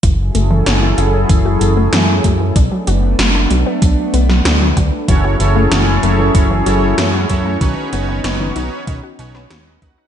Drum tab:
HH |x-x-x-x-x-x-x-x-|x-x-x-x-x-x-x-x-|x-x-x-x-x-x-x-x-|x-x-x-x-x-x-x-x-|
SD |----o-------o---|----o------oo---|----o-------o---|----o------oo---|
BD |o-------o-----o-|o-------o-----o-|o-------o-----o-|o-------o-----o-|